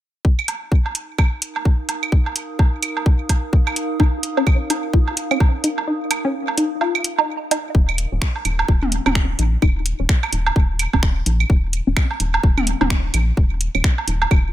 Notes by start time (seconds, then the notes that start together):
0.25 D#4, kick
0.39 claves
0.48 closed hi-hat, low woodblock
0.64 A#4
0.72 kick
0.86 D#6, low woodblock
0.95 F5, closed hi-hat
1.18 kick, claves, low woodblock
1.42 closed hi-hat
1.56 low woodblock
1.65 kick
1.89 closed hi-hat, low woodblock
2.03 claves
2.12 kick
2.26 low woodblock
2.36 closed hi-hat
2.59 kick, low woodblock
2.83 closed hi-hat, claves
2.97 low woodblock
3.06 kick
3.29 kick, closed hi-hat, low woodblock
3.53 kick
3.67 claves, low woodblock
3.76 closed hi-hat
4.00 D#4, kick, low woodblock
4.23 closed hi-hat
4.37 C#4, low woodblock
4.47 kick, claves
4.70 D#4, closed hi-hat, low woodblock
4.93 F4, kick
5.08 low woodblock
5.17 closed hi-hat
5.31 C#4, claves
5.40 kick, low woodblock
5.64 D#4, closed hi-hat
5.78 low woodblock
5.87 D#4
6.11 closed hi-hat, claves, low woodblock
6.25 C#4
6.48 low woodblock
6.58 D#4, closed hi-hat
6.81 F4, low woodblock
6.95 claves
7.04 closed hi-hat
7.18 D#4, low woodblock
7.51 D#4, closed hi-hat, low woodblock
7.75 D#1 D#4, kick
7.89 claves
7.98 closed hi-hat
8.12 D#1 C#4
8.22 finger snap, kick
8.36 low woodblock
8.45 D#1 D#4, closed hi-hat, claves
8.59 low woodblock
8.68 D#1 F4, kick
8.83 mid tom
8.92 closed hi-hat
9.06 D#1 C#4, mid tom, claves, low woodblock
9.15 finger snap, kick
9.39 A#1 D#4, closed hi-hat
9.62 D#1 D#4, kick, claves
9.86 closed hi-hat
10.00 D#1 C#4
10.09 finger snap, kick
10.23 claves, low woodblock
10.32 D#1 D#4, closed hi-hat
10.46 low woodblock
10.56 D#1 F4, kick
10.79 closed hi-hat, claves
10.93 D#1 C#4, kick, low woodblock
11.03 finger snap, kick
11.26 A#1 D#4, closed hi-hat
11.40 claves
11.50 D#1 D#4, kick
11.73 closed hi-hat
11.87 D#1 C#4
11.97 finger snap, kick, claves
12.11 low woodblock
12.20 D#1 D#4, closed hi-hat
12.34 low woodblock
12.43 D#1 F4, kick
12.58 mid tom, claves
12.67 closed hi-hat
12.81 D#1 C#4, mid tom, low woodblock
12.90 finger snap, kick
13.14 A#1 D#4, closed hi-hat, claves
13.37 D#1, kick
13.61 closed hi-hat
13.75 D#1 C#4, claves
13.84 finger snap, kick
13.98 low woodblock
14.08 D#1 D#4, closed hi-hat
14.22 low woodblock
14.31 D#1 F4, kick, claves